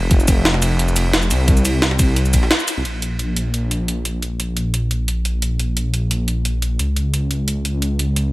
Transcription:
0.11 1.32 F1 loud
0.11 kick loud
0.11 closed hi-hat medium
0.20 shaker soft
0.28 kick loud
0.28 closed hi-hat loud
0.28 ride medium
0.28 shaker medium
0.45 snare loud
0.45 closed hi-hat medium
0.54 snare medium
0.62 closed hi-hat loud
0.62 ride medium
0.62 shaker medium
0.79 closed hi-hat medium
0.88 shaker soft
0.96 closed hi-hat loud
0.96 ride medium
0.96 shaker medium
1.14 snare loud
1.14 closed hi-hat medium
1.23 shaker soft
1.31 1.64 C2 loud
1.31 closed hi-hat loud
1.31 ride medium
1.31 shaker medium
1.48 kick loud
1.48 closed hi-hat medium
1.57 shaker soft
1.65 2.35 C2 medium
1.65 closed hi-hat loud
1.65 ride medium
1.65 shaker medium
1.82 snare loud
1.82 closed hi-hat medium
1.91 snare medium
1.99 kick loud
1.99 closed hi-hat loud
1.99 ride medium
1.99 shaker medium
2.16 closed hi-hat medium
2.26 shaker soft
2.34 2.49 A#1 loud
2.34 kick medium
2.34 closed hi-hat medium
2.34 ride medium
2.34 shaker medium
2.43 snare soft
2.51 snare loud
2.51 closed hi-hat medium
2.60 shaker soft
2.68 closed hi-hat loud
2.68 ride medium
2.68 shaker medium
2.77 2.84 C2 loud
2.85 6.78 A#1 medium
2.85 closed hi-hat medium
3.02 closed hi-hat medium
3.19 closed hi-hat medium
3.36 closed hi-hat medium
3.54 closed hi-hat medium
3.71 closed hi-hat medium
3.88 closed hi-hat medium
4.05 closed hi-hat medium
4.22 closed hi-hat medium
4.40 closed hi-hat medium
4.57 closed hi-hat medium
4.74 closed hi-hat medium
4.91 closed hi-hat medium
5.08 closed hi-hat medium
5.25 closed hi-hat medium
5.42 closed hi-hat medium
5.59 closed hi-hat medium
5.77 closed hi-hat medium
5.94 closed hi-hat medium
6.11 closed hi-hat medium
6.28 closed hi-hat medium
6.45 closed hi-hat medium
6.62 closed hi-hat medium
6.79 8.33 C#2 medium
6.79 closed hi-hat medium
6.96 closed hi-hat medium
7.14 closed hi-hat medium
7.31 closed hi-hat medium
7.48 closed hi-hat medium
7.65 closed hi-hat medium
7.82 closed hi-hat medium
7.99 closed hi-hat medium
8.16 closed hi-hat medium

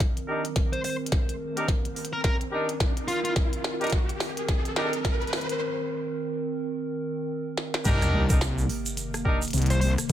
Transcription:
0.00 7.81 D#3 medium
0.00 7.81 C4 medium
0.00 7.81 A#4 medium
0.00 kick loud
0.00 snare soft
0.00 closed hi-hat medium
0.00 riser medium
0.17 closed hi-hat soft
0.28 0.42 D4 medium
0.28 0.42 D#4 medium
0.28 0.42 G4 medium
0.28 0.42 A#4 medium
0.45 closed hi-hat medium
0.56 kick medium
0.56 snare medium
0.56 closed hi-hat medium
0.73 0.80 C5 medium
0.73 closed hi-hat soft
0.84 0.95 C5 medium
0.84 open hi-hat medium
1.06 closed hi-hat medium
1.12 kick loud
1.12 snare medium
1.12 closed hi-hat medium
1.29 closed hi-hat soft
1.57 1.66 D4 medium
1.57 1.66 D#4 medium
1.57 1.66 G4 medium
1.57 1.67 A#4 medium
1.57 closed hi-hat medium
1.68 kick loud
1.68 snare medium
1.68 closed hi-hat medium
1.85 closed hi-hat soft
1.96 open hi-hat medium
2.05 closed hi-hat medium
2.13 2.20 A#4 medium
2.24 2.35 A#4 medium
2.24 kick loud
2.24 snare medium
2.24 closed hi-hat medium
2.41 closed hi-hat soft
2.52 2.66 D4 medium
2.52 2.66 D#4 medium
2.52 2.66 G4 medium
2.52 2.66 A#4 loud
2.69 closed hi-hat medium
2.80 kick medium
2.80 snare medium
2.80 closed hi-hat medium
2.97 closed hi-hat soft
3.08 3.19 F4 medium
3.08 open hi-hat medium
3.24 3.32 F4 medium
3.24 closed hi-hat medium
3.36 kick medium
3.36 snare medium
3.36 closed hi-hat medium
3.53 closed hi-hat soft
3.64 snare medium
3.81 3.91 D4 medium
3.81 3.91 D#4 medium
3.81 3.91 G4 medium
3.81 3.91 A#4 loud
3.81 closed hi-hat soft
3.84 closed hi-hat soft
3.87 closed hi-hat soft
3.90 kick loud
3.90 snare medium
3.90 closed hi-hat soft
3.92 closed hi-hat medium
4.09 closed hi-hat soft
4.20 snare medium
4.20 open hi-hat medium
4.37 closed hi-hat medium
4.48 kick loud
4.48 snare medium
4.48 closed hi-hat medium
4.65 closed hi-hat soft
4.76 4.91 D4 medium
4.76 4.91 D#4 medium
4.76 4.91 G4 medium
4.76 4.91 A#4 loud
4.76 snare medium
4.93 closed hi-hat medium
5.05 kick medium
5.05 snare medium
5.05 closed hi-hat medium
5.22 closed hi-hat soft
5.27 closed hi-hat soft
5.33 snare medium
5.33 closed hi-hat soft
5.33 open hi-hat medium
5.41 closed hi-hat soft
5.49 closed hi-hat medium
7.57 snare medium
7.74 snare medium
7.85 8.11 C2 medium
7.85 10.12 C3 medium
7.85 10.12 D#3 medium
7.85 10.12 A#3 medium
7.85 8.23 D4 loud
7.85 8.23 D#4 loud
7.85 8.23 G4 medium
7.85 8.23 A#4 loud
7.85 kick loud
7.85 closed hi-hat medium
7.85 crash loud
7.85 sub drop medium
7.85 shaker medium
8.02 cross-stick soft
8.02 closed hi-hat soft
8.02 shaker soft
8.13 8.67 C2 loud
8.30 8.39 D4 medium
8.30 8.39 D#4 medium
8.30 8.39 G4 medium
8.30 8.39 A#4 medium
8.30 kick loud
8.30 closed hi-hat medium
8.30 shaker medium
8.41 snare loud
8.41 closed hi-hat medium
8.41 shaker medium
8.58 shaker soft
8.69 open hi-hat medium
8.86 closed hi-hat medium
8.86 shaker medium
8.97 closed hi-hat medium
8.97 shaker medium
9.14 cross-stick medium
9.14 closed hi-hat soft
9.14 shaker soft
9.25 9.39 D4 medium
9.25 9.39 D#4 medium
9.25 9.39 G4 medium
9.25 9.39 A#4 medium
9.25 kick medium
9.42 closed hi-hat soft
9.42 shaker medium
9.45 closed hi-hat soft
9.48 closed hi-hat soft
9.51 closed hi-hat soft
9.53 9.96 C2 loud
9.53 closed hi-hat medium
9.53 shaker medium
9.58 closed hi-hat soft
9.62 closed hi-hat soft
9.66 closed hi-hat medium
9.70 9.78 C5 medium
9.70 closed hi-hat soft
9.70 shaker soft
9.81 9.92 C5 medium
9.81 open hi-hat medium
9.98 cross-stick soft
9.98 closed hi-hat medium
9.98 shaker medium

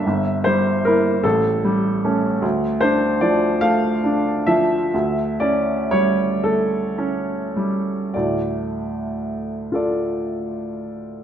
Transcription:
0.00 0.45 E5 medium
0.07 1.22 G1 soft
0.44 1.09 G3 soft
0.44 0.84 C5 medium
0.85 1.21 A#3 soft
0.85 1.21 E4 soft
0.85 1.24 A#4 soft
1.24 2.39 A1 soft
1.24 2.43 A4 soft
1.65 2.28 G3 soft
2.05 2.39 A3 soft
2.05 2.39 C#4 soft
2.42 4.88 D2 soft
2.81 3.46 D4 soft
2.81 3.21 C5 medium
3.21 3.87 F3 soft
3.21 3.62 D5 medium
3.61 4.29 A3 soft
3.61 4.46 F5 medium
4.04 4.74 D4 soft
4.47 4.93 F3 soft
4.47 5.41 E5 medium
4.94 8.10 D2 soft
5.40 6.22 C#4 soft
5.40 5.90 D5 soft
5.91 6.76 G3 soft
5.91 6.43 C#5 soft
6.44 7.33 A3 soft
6.44 8.14 A4 soft
6.98 7.92 C#4 soft
7.56 8.14 G3 soft
8.14 11.24 D2 soft
8.14 11.24 A2 soft
8.14 9.74 D5 soft
9.72 11.24 F4 soft
9.72 11.24 A4 soft
9.72 11.24 D5 soft

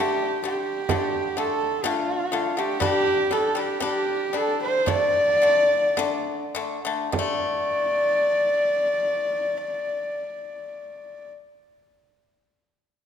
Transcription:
0.00 0.35 D3 medium
0.00 0.35 A3 loud
0.00 0.44 G4 loud
0.44 0.81 D3 medium
0.44 0.82 A3 medium
0.44 1.38 G4 medium
0.44 frame drum soft
0.89 1.27 D3 medium
0.89 1.28 A3 medium
0.89 frame drum medium
1.37 1.75 D3 medium
1.37 1.75 A3 medium
1.37 1.87 A4 medium
1.37 frame drum soft
1.84 2.22 D3 loud
1.84 2.23 A3 loud
1.84 2.60 F4 medium
1.84 frame drum medium
2.32 2.52 D3 medium
2.32 2.52 A3 medium
2.32 frame drum soft
2.57 2.76 D3 medium
2.57 2.77 A3 medium
2.57 2.81 G4 medium
2.80 3.20 G3 medium
2.80 3.21 D4 loud
2.80 3.34 G4 loud
2.80 frame drum medium
3.31 3.51 G3 medium
3.31 3.52 D4 medium
3.31 3.60 A4 loud
3.31 frame drum soft
3.55 3.76 G3 medium
3.55 3.77 D4 medium
3.55 3.83 G4 medium
3.80 4.22 G3 medium
3.80 4.23 D4 loud
3.80 4.38 G4 medium
3.80 frame drum medium
4.33 4.75 G3 medium
4.33 4.76 D4 medium
4.33 4.61 A4 loud
4.33 frame drum soft
4.62 4.89 C5 loud
4.86 5.30 D3 medium
4.86 5.30 A3 medium
4.86 6.55 D5 loud
4.86 frame drum medium
5.42 5.86 D3 medium
5.42 5.87 A3 medium
5.42 frame drum soft
5.97 6.43 D3 loud
5.97 6.44 A3 loud
5.97 frame drum medium
6.55 6.78 D3 medium
6.55 6.79 A3 loud
6.55 frame drum soft
6.85 7.08 D3 medium
6.85 7.09 A3 medium
7.12 11.28 D3 medium
7.12 11.31 D5 loud
7.12 frame drum medium
7.19 11.34 A3 medium

